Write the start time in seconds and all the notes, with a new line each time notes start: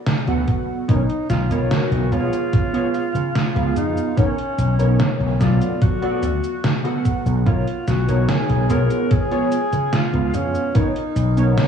0.06 snare, closed hi-hat
0.27 D2 B3 F#4 A4 F#5, closed hi-hat
0.48 kick, closed hi-hat
0.88 B1 B3 D#4 A#4 C#5, kick, closed hi-hat, cabasa
0.96 C#4
1.03 D#4
1.10 closed hi-hat
1.30 B1 F4, snare, closed hi-hat, cabasa
1.50 B1 B3 D#4 A#4 C#5, closed hi-hat, cabasa
1.71 F#4, snare, closed hi-hat, cabasa
1.91 B1, closed hi-hat
2.12 B1 B3 F4 G#4 C#5, closed hi-hat, cabasa
2.33 closed hi-hat, cabasa
2.53 kick, closed hi-hat, cabasa
2.73 B3 F4 G#4 C#5, closed hi-hat
2.94 closed hi-hat, cabasa
3.15 C#3, closed hi-hat, cabasa
3.35 snare, closed hi-hat, cabasa
3.55 C#2 B3 F4 G#4 F5, closed hi-hat
3.76 F2 D#4, closed hi-hat, cabasa
3.97 cabasa
4.16 B3 C#4 D#4 A#4 C#5, kick, closed hi-hat, cabasa
4.38 closed hi-hat
4.58 B1, closed hi-hat, cabasa
4.79 B1 B3 D#4 A#4 C#5, closed hi-hat, cabasa
5.00 snare, closed hi-hat, cabasa
5.20 B1, closed hi-hat
5.40 B1 F#3 B3 F4 A4 D5, kick, snare, closed hi-hat, cabasa
5.62 closed hi-hat, cabasa
5.82 F#4, kick, closed hi-hat, cabasa
6.02 B3 F#4 A4 D5, closed hi-hat
6.23 D2, closed hi-hat, cabasa
6.44 closed hi-hat, cabasa
6.64 snare, closed hi-hat, cabasa
6.84 B3 F#4 A4 F#5, closed hi-hat
7.05 kick, closed hi-hat, cabasa
7.26 B1, cabasa
7.46 B1 B3 D#4 F4 A#4 C#5, kick, closed hi-hat, cabasa
7.67 closed hi-hat
7.87 B1 F#4, snare, closed hi-hat, cabasa
8.08 B1 B3 D#4 A#4 C#5, closed hi-hat, cabasa
8.29 G#4, snare, closed hi-hat, cabasa
8.49 B1, closed hi-hat
8.69 B1 B3 F4 G#4 A#4 C#5, closed hi-hat, cabasa
8.90 closed hi-hat, cabasa
9.11 G#4, kick, closed hi-hat, cabasa
9.31 B3 F4 G#4 C#5, closed hi-hat
9.52 closed hi-hat, cabasa
9.73 C#3, closed hi-hat, cabasa
9.93 F4, snare, closed hi-hat, cabasa
10.13 C#2 B3 F4 G#4 F5, closed hi-hat
10.34 F2 C#4, closed hi-hat, cabasa
10.55 cabasa
10.74 B3 D#4 A#4 C#5, kick, closed hi-hat, cabasa
10.96 closed hi-hat
11.16 B1, closed hi-hat, cabasa
11.37 B1 B3 D#4 A#4 C#5, closed hi-hat, cabasa
11.57 snare, closed hi-hat, cabasa